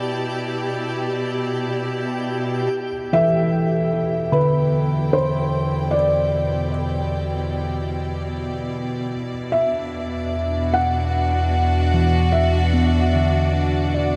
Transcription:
Already playing: string section B2 E4 G4 D5 A5, synth texture G4 G5
2.72 analog synth bass E2
3.13 tine electric piano E3 A4, felt piano E5
3.26 string section G5
4.32 tine electric piano D3 B5, felt piano B4
4.58 string section D5
5.13 felt piano C5
5.91 felt piano D5
9.13 analog synth bass E2
9.42 string section D4
9.52 felt piano E5
10.64 string section F#4
10.74 felt piano F#5
11.94 tine electric piano E3
12.32 felt piano E5
12.73 tine electric piano B3
13.14 tine electric piano D3
13.94 felt piano D5

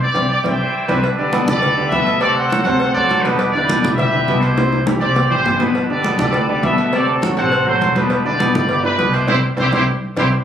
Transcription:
Already playing: trumpet section E4
0.02 trumpet section G4 D5
0.14 upright bass C2, grand piano C4 D4 E4, cowbell, high conga
0.31 trumpet section D5
0.43 upright bass C2, grand piano C4 D4 E4, trumpet section D5 E5 G5, cowbell, high conga
0.60 trumpet section E4 G4 C5
0.87 upright bass C2, grand piano C4 D4 E4, trumpet section D4 B4, cowbell, high conga
1.04 cowbell, high conga
1.17 grand piano D3 D4 G4, trumpet section A4 B4 D5, high conga
1.33 grand piano B2 B3 B4, cowbell, high conga
1.47 upright bass D2, grand piano D3 D4 G4, trumpet section A4 B4 D5, high conga, low conga
1.62 cowbell, high conga, low conga
1.78 grand piano D3 D4 G4, high conga
1.89 upright bass D2, grand piano B2 B3, trumpet section A4 B4 E5, cowbell, high conga
1.93 grand piano B4
2.07 cowbell, high conga
2.20 grand piano C3 C4 C5, trumpet section F#4 A4 D5, cowbell, high conga
2.35 trumpet section A4 C5 F#5, high conga
2.50 grand piano F#3 F#4 A4, cowbell, high conga
2.64 upright bass D2, grand piano C3 C4 C5, trumpet section A4 C5 F#5, cowbell, high conga
2.80 cowbell, high conga
2.94 upright bass D2, grand piano F#3 F#4 A4, trumpet section F#4 A4 D5, high conga
3.09 upright bass E2, cowbell, high conga
3.22 grand piano B2 B3 B4, trumpet section D4 G4 B4, cowbell, high conga
3.39 cowbell, high conga
3.52 grand piano D3 D4 E4, trumpet section G4 B4 D5, high conga
3.69 grand piano B2 B3 B4, cowbell, high conga
3.81 upright bass B1, grand piano D3 D4 E4, trumpet section D5, high conga, low conga
3.96 trumpet section G4 B4 E5, cowbell, high conga, low conga
4.13 grand piano D3 D4 E4, high conga
4.28 upright bass C2, grand piano B2 B3 B4, cowbell, high conga
4.41 trumpet section E4 G4 C5, cowbell, high conga
4.57 grand piano C3 C4 C5, cowbell, high bongo, high conga
4.72 high bongo, high conga
4.86 grand piano E3 E4 G4, cowbell, high bongo, high conga
4.99 upright bass C2, grand piano C3 C4 C5, trumpet section G4 D5, cowbell, high conga
5.16 cowbell, low bongo, high conga
5.31 upright bass A1, grand piano E3 E4 G4, trumpet section E4 G4 C5, high conga
5.45 upright bass G1, cowbell, low bongo, high conga
5.59 grand piano B2 B3 B4, trumpet section D4 B4, cowbell, low bongo, high conga
5.75 cowbell, high conga
5.89 grand piano D3 D4 G4, trumpet section A4 B4 D5, high conga
6.04 grand piano B2 B3 B4, cowbell, high conga
6.18 upright bass D2, grand piano D3 D4 G4, trumpet section A4 B4 D5, high conga, low conga
6.33 cowbell, high conga, low conga
6.48 grand piano D3 D4 G4, trumpet section D5, high conga
6.63 upright bass D2, grand piano B2 B3 B4, trumpet section A4 B4 E5, cowbell, high conga
6.78 cowbell, high conga
6.93 grand piano C3 C4 C5, trumpet section F#4 A4 D5, cowbell, high conga
7.08 high conga
7.22 grand piano F#3 F#4 A4, cowbell, high conga
7.37 upright bass A1, grand piano C3 C4 C5, trumpet section A4 C5 F#5, cowbell, high conga
7.52 cowbell, high conga
7.67 grand piano F#3 F#4 A4, trumpet section F#4 A4 C5, high conga
7.81 upright bass E1, cowbell, high conga
7.95 grand piano B2 B3 B4, trumpet section D4 G4 B4, cowbell, high conga
8.10 cowbell, high conga
8.25 grand piano D3 D4 E4, trumpet section G4 B4 D5, high conga
8.40 grand piano B2 B3 B4, cowbell, high conga
8.54 upright bass G1, grand piano D3 D4 E4, trumpet section D5, high conga, low conga
8.69 trumpet section G4 B4 D5, cowbell, high conga
8.83 grand piano D3 D4 E4, trumpet section D4 G4 B4, high conga
8.98 upright bass C2, grand piano B2 B3 B4, cowbell, high conga
9.14 trumpet section E4 G4 C5, cowbell, high conga
9.27 upright bass C2, grand piano C4 D4 E4, trumpet section E4 G4 C5, cowbell, high conga
9.57 upright bass C2, grand piano C4 D4 E4, trumpet section E4 G4 C5, cowbell, high conga
9.72 upright bass C2, grand piano C4 D4 E4, trumpet section E4 G4 C5, cowbell, high conga
10.16 upright bass C2, grand piano C4 D4 E4, trumpet section E4 G4 C5, cowbell, high conga

